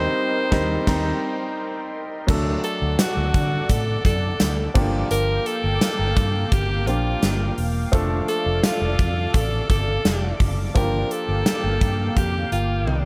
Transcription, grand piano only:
Already playing: G3 C4 D#4 A#4
0.51 G3 C4 D#4 A#4
0.87 G3 C4 D#4 A#4
2.27 F#3 A3 D4 A4
4.74 F3 A#3 D4 G4
6.87 F3 A#3 D4 G4
7.92 F3 A3 D4 A4
10.74 F3 A#3 D4 G4

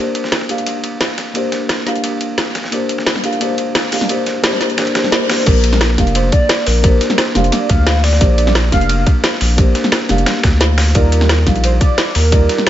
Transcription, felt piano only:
Already playing: A#3 D4
0.00 G4 C5
0.49 A#3 D4 G4 F5
1.34 A#3 D4 G4 C5
1.86 A#3 D4 G4 F5
2.71 A#3 D4 G4 C5
3.23 A#3 D4 G4 F5
3.39 A#3 D4 G4 C5
3.92 A#3 D4 G4 F5
4.08 A#3 D4 G4 C5
4.42 A#3 D4 G4 C5
4.76 A#3 D4 G4 C5
4.94 A#3 D4 G4 C5
5.11 A#3 D4 G4 C5
5.28 A#3 D4 G4 C5
5.45 A#3 D4 G4 C5
5.97 A#3 D4 G4 F5
6.82 A#3 D4 G4 C5
7.34 A#3 D4 G4 F5
8.20 A#3 D4 G4 C5
8.71 A#3 D4 G4 F5
9.56 A#3 D4 G4 C5
10.09 A#3 D4 G4 F5
10.94 G3 D#4 F4 D5
11.46 G3 D#4 F4 F5
12.31 G3 D#4 F4 D5

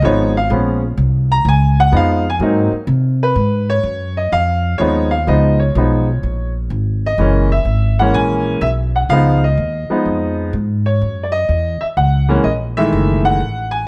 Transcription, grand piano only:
0.03 F3 G#3 B3 D#4 C#5
0.37 F5
0.50 F3 G#3 B3 C#4
1.32 A#5
1.49 G#5
1.80 F#5
1.92 F3 G#3 B3 D#4
1.97 F5
2.30 G#5
2.41 F#3 A#3 C4 D#4
3.23 B4
3.70 C#5
4.17 D#5
4.33 F5
4.78 F3 G#3 B3 D#4 C#5
5.11 F5
5.27 F3 G#3 B3 D#4 D#5
5.60 C#5
5.76 F3 G#3 B3 D#4
7.06 D#5
7.19 E3 G#3 A#3 C#4
7.52 E5
7.99 E3 G#3 A#3 C#4 F#5
8.14 G#5
8.62 E5
8.96 F#5
9.10 F3 G#3 B3 D#4 F5
9.44 D#5
9.90 F3 G#3 B3 D#4
10.86 C#5
11.23 D5
11.32 D#5
11.81 E5
11.97 F#5
12.29 E3 G#3 A#3 C#4
12.44 D#5
12.77 D#3 E3 G#3 A3 E5
13.25 F#5
13.71 G#5

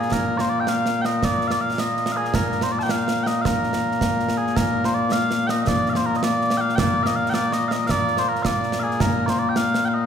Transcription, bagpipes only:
Already playing: A#2 A#3 G#4
0.13 A#4
0.37 C5 D5
0.49 D5
0.60 G5
0.68 F5
1.01 G5
1.06 D#5
1.24 D5
1.48 D5 F5
1.61 F5
1.80 D#5
2.12 F5
2.17 G#4
2.35 A#4
2.63 C5
2.72 D5
2.79 G5 A5
2.91 F5
3.23 D#5 G5
3.42 A#4 F5
4.38 G#4
4.57 A#4
4.85 C5
4.94 D5
5.12 F5
5.47 D#5 G5
5.61 D#5
5.68 D5
5.90 D5 F5
5.97 C5
6.06 A#4
6.16 D#5
6.24 D5
6.57 F5 G5
6.75 D5 G5
7.03 D#5 F5
7.16 F5
7.30 G5
7.34 D5
7.53 D#5
7.68 D#5 F5
7.87 D5 F5
8.19 C5
8.28 A#4
8.43 D5 F5
8.80 G#4 F5
9.01 A#4
9.26 C5 D5
9.39 D5
9.49 G5
9.56 F5
9.85 F5 G5
9.94 D#5

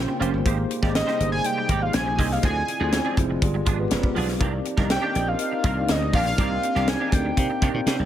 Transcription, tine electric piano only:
Already playing: A#3 C#4 F4 G4 A#4 C5
0.20 A#3 C#4 F4 G4 C5
0.45 A#3 D#4 G4 G#4 C5
0.82 A#3 D#4 G4 G#4 D#5
1.19 A#3 D#4 G4 G#4 C5
1.44 A#3 D#4 G4 G#4 D5
1.82 A#3 D#4 G4 G#4 C5
2.18 A#3 D#4 G4 G#4 D#5
2.43 C4 E4 F4 G#4 D5
2.80 C4 E4 F4 G#4 D5
3.17 C4 E4 F4 G#4 C5
3.42 B3 F4 G4 G#4 D5
3.78 B3 F4 G4 G#4 B4
3.91 D5
4.16 F5
4.40 C4 D#4 G4 A#4 D5
4.78 C4 D#4 G4 A#4 D#5
5.14 C4 D#4 G4 A#4 D5
5.39 C4 D#4 G4 A#4 D#5
5.76 C4 D#4 G4 A#4 D5
6.13 C4 D#4 G4 A#4 D5
6.38 C4 D#4 G4 A#4 D5
6.74 C4 D#4 G4 A#4 D5
7.12 C4 D#4 G4 A#4 D5
7.37 C4 D#4 G4 A#4 F5
7.74 C4 D#4 G4 A#4 D5

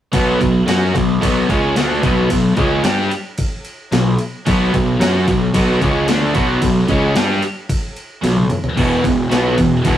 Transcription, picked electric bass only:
0.14 B1
0.41 B1
0.66 F#2
0.95 B1
1.22 B1
1.49 C#2
1.76 D2
2.04 B1
2.30 B1
2.57 C#2
2.84 G2
3.92 B1
4.47 B1
4.74 B1
5.00 F#2
5.28 B1
5.55 B1
5.82 C#2
6.08 D2
6.35 B1
6.62 B1
6.89 C#2
7.15 G2
8.23 B1
8.77 E1
9.05 E1
9.31 B1
9.58 E1
9.85 E1

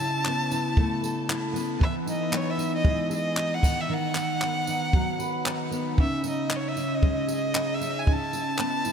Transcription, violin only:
Already playing: A5
1.83 E5
2.10 D#5
2.37 C#5
2.50 E5
2.75 D#5
3.15 D#5
3.54 F#5
3.81 E5
3.94 F#5
6.01 E5
6.29 D#5
6.56 C#5
6.68 E5
6.95 D#5
7.35 D#5
7.74 E5
7.99 G#5
8.13 A5

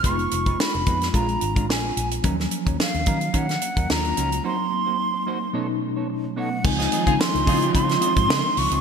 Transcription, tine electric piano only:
0.03 G#3 B3 D#4 F4
1.12 G#3 C4 D4 F4
2.22 F3 F#3 A#3 C#4
3.88 F3 A#3 C#4 F4
3.95 F#3
4.42 F#3 A#3 C4 D#4
5.53 B2 F#3 A3 C#4 D#4
6.64 F3 G#3 C4 D#4
6.93 D#3 G#3 C4 D#4
6.99 F3
7.47 F3 G#3 C4 E4
7.54 F4

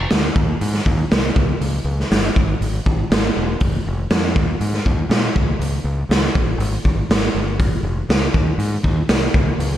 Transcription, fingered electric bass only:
0.12 D2
0.36 D#2
0.61 G#2
0.86 D#2
1.12 C2
1.36 C#2
1.60 C#2
1.84 C#2
2.11 G1
2.35 G#1
2.61 G#1
2.86 G#1
3.10 G#1
3.37 E1
3.61 F1
3.87 F1
4.11 F2
4.36 D#2
4.61 G#2
4.86 D#2
5.09 A#2
5.35 C#2
5.59 C#2
5.84 C#2
6.09 C#2
6.36 G#1
6.58 G#1
6.84 G#1
7.10 G#1
7.34 G1
7.60 F1
7.83 F1
8.09 C#2
8.34 D#2
8.58 G#2
8.83 D#2
9.09 C2
9.34 C#2
9.58 C#2

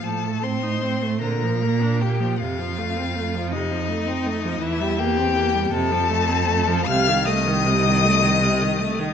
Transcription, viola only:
0.04 F3
0.23 A3
0.42 C4
0.62 D#4
0.82 C4
1.02 A3
1.22 D3
1.43 F3
1.63 A#3
1.82 D4
2.02 A#3
2.20 F3
2.40 C3
2.59 F3
2.78 A3
2.97 C4
3.16 A3
3.34 F3
3.52 C3
3.71 F3
3.89 A3
4.06 C4
4.26 A3
4.45 F3
4.61 E3
4.81 G3
4.99 A#3
5.17 C4
5.36 A#3
5.55 G3
5.73 C3
5.91 F3
6.10 A3
6.29 C4
6.48 A3
6.68 F3
6.88 C3
7.08 D#3
7.27 A3
7.47 D#3
7.66 C3
7.84 D#3
8.04 A3
8.22 D#3
8.41 C3
8.62 D#3
8.80 A3
8.99 D#3

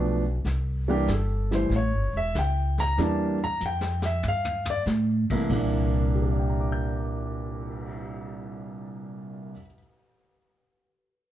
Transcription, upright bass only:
Already playing: B1
0.45 C2
1.07 G1
1.70 A1
1.92 G1
2.13 E1
2.35 C#2
2.98 E2
3.61 F2
4.24 G2
4.86 A2
5.30 muted upright bass stroke
5.50 C2

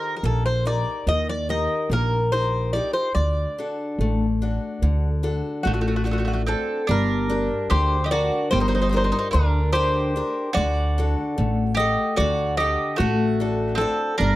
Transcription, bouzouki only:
Already playing: A#4
0.17 A#4
0.25 A4
0.46 C5
0.67 D5
1.08 D#5
1.29 D5
1.50 D#5
1.93 A#4
2.32 C5
2.73 D5
2.93 C5
3.15 D5
5.63 F#4
5.74 F#4
5.81 F#4
5.88 F#4
5.96 F#4
6.04 F#4
6.13 F#4
6.20 F#4
6.28 F#4
6.34 F#4
6.48 A4
6.91 A#4
7.71 C5
8.06 D#5
8.11 D5
8.51 C5
8.60 C5
8.68 C5
8.75 C5
8.81 C5
8.89 C5
8.97 C5
9.04 C5
9.12 C5
9.19 C5
9.33 A#4
9.73 C5
10.54 D5
11.77 D#5
12.17 D5
12.57 D#5
12.98 F#4
13.78 A4
14.18 A#4

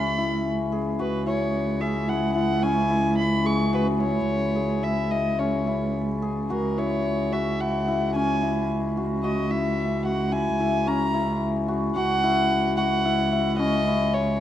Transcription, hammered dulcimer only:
Already playing: C#4 E4 F#4 G#4
0.18 E4
0.72 G#4
0.99 F#4
1.26 E4
1.81 G#4
2.08 E4
2.35 E4
2.63 C#4
2.90 E4
3.45 G#4
3.73 F#4
4.00 E4
4.55 G#4
4.83 E4
5.11 E4
5.39 C#4
5.67 E4
6.22 G#4
6.50 F#4
6.78 E4
7.32 F#4
7.60 E4
7.88 E4
8.15 C#4
8.43 E4
8.97 F#4
9.24 F#4
9.51 E4
10.05 F#4
10.32 E4
10.60 E4
10.87 C#4
11.14 E4
11.68 F#4
11.96 F#4
12.24 E4
12.78 F#4
13.05 E4
13.32 E4
13.59 C#4
13.87 E4

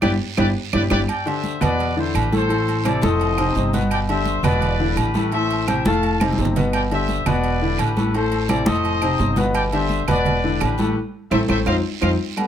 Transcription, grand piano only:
0.02 D4 E4 G4
0.37 D4 E4 G4
0.73 D4 E4 G4
0.90 D4 E4 G4
1.26 D3 D4 G4
1.61 B2 B3 B4
1.96 D3 D4 E4
2.32 A2 A3 A4
2.49 A2 A3 A4
2.84 C3 C4 E4
3.02 A2 A3 A4
3.38 C3 C4 D#4
3.56 C3 C4 D#4
3.74 B2 B3 B4
4.09 D3 D4 G4
4.43 B2 B3 B4
4.79 D3 D4 E4
5.15 A2 A3 A4
5.33 A2 A3 A4
5.68 C3 C4 E4
5.86 A2 A3 A4
6.21 C3 C4 D#4
6.38 C3 C4 D#4
6.56 B2 B3 B4
6.91 D3 D4 G4
7.27 B2 B3 B4
7.62 D3 D4 E4
7.97 A2 A3 A4
8.14 A2 A3 A4
8.49 C3 C4 E4
8.66 A2 A3 A4
9.02 C3 C4 D#4
9.20 C3 C4 D#4
9.37 B2 B3 B4
9.73 D3 D4 G4
10.08 B2 B3 B4
10.44 D3 D4 E4
10.79 A2 A3 A4
11.31 A3 C4 E4
11.49 A3 C4 E4
11.66 C4 D#4 F4
12.01 C4 D#4 F4
12.37 G3 A3 B3

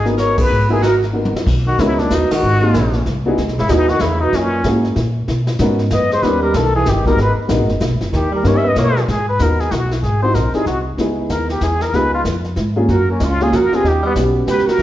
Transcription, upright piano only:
0.06 B3 D#4 F#4 A#4
0.69 B3 D#4 F#4 A#4
1.13 B3 D#4 F#4 A#4
1.78 B3 C#4 D#4 F#4 A#4
2.62 A#3 C4 D#4 F#4 G#4
3.26 B3 D#4 E4 F#4 G#4
3.69 B3 D#4 E4 F#4 G#4
4.65 A#3 C#4 E4 F#4 G#4
5.60 B3 C#4 D#4 F#4 A#4
6.23 B3 C#4 D#4 G4 A#4
7.06 G#3 B3 D#4 F#4 A#4
7.48 G#3 B3 D#4 F#4 A#4
8.44 G3 B3 C#4 D#4 A#4
9.40 B3 D#4 F#4 A#4
10.22 C4 D#4 E4 F#4
10.54 C4 D#4 E4 G#4
10.99 B3 D#4 E4 G#4
11.94 B3 D#4 F4 G#4
12.76 A#3 C#4 F4 G#4
13.41 A#3 C#4 F4 G#4
13.72 B3 C#4 F#4 G4
14.15 B3 C#4 F#4 G4

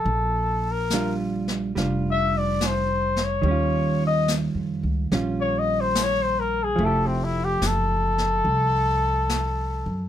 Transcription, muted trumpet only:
Already playing: A4
0.72 A#4
2.11 E5
2.38 D5
2.67 C5
3.24 C#5
4.07 D#5
5.41 C#5
5.59 D#5
5.81 C5
6.03 C#5
6.22 C5
6.40 A#4
6.64 G#4
6.85 A4
7.07 C4
7.24 E4
7.44 G4
7.67 A4

